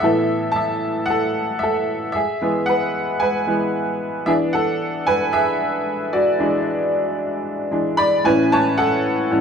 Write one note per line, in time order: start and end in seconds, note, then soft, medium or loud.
0.00 2.11 A2 medium
0.00 2.11 E3 soft
0.00 2.12 B3 medium
0.00 0.55 E5 medium
0.04 0.53 A4 medium
0.52 1.03 A5 medium
0.56 1.05 E5 medium
1.06 1.57 F#5 medium
1.10 1.59 A4 medium
1.59 2.11 E5 medium
1.63 2.12 A4 medium
2.12 2.65 G#4 medium
2.12 2.68 E5 medium
2.41 3.45 E3 soft
2.41 3.46 G#3 soft
2.41 3.46 B3 medium
2.66 3.18 B4 medium
2.66 3.22 F#5 medium
3.20 3.97 B4 medium
3.20 3.96 G#5 medium
3.47 3.71 E3 soft
3.47 3.71 G#3 soft
3.47 3.71 B3 soft
4.26 6.34 E3 medium
4.26 6.35 B3 soft
4.26 6.35 D4 medium
4.26 4.33 G#4 medium
4.26 4.32 E5 medium
4.53 5.03 A4 medium
4.53 5.08 F#5 medium
5.07 5.32 B4 medium
5.07 5.34 G#5 medium
5.33 6.09 G#4 medium
5.33 6.08 E5 medium
6.13 7.68 F#4 medium
6.13 7.67 D5 medium
6.39 7.14 E3 medium
6.39 7.15 G#3 medium
6.39 7.15 D4 medium
7.71 7.95 E3 soft
7.71 7.95 G#3 soft
7.71 7.96 D4 soft
7.97 8.23 D5 medium
7.97 8.25 B5 loud
8.24 9.29 A2 medium
8.24 9.30 E3 medium
8.24 9.30 C#4 medium
8.24 8.50 B4 medium
8.24 8.52 G#5 medium
8.52 8.59 C#5 medium
8.52 8.58 A5 loud
8.78 9.41 A4 medium
8.78 9.41 F#5 medium
9.31 9.41 A2 soft
9.31 9.41 E3 soft
9.31 9.41 C#4 medium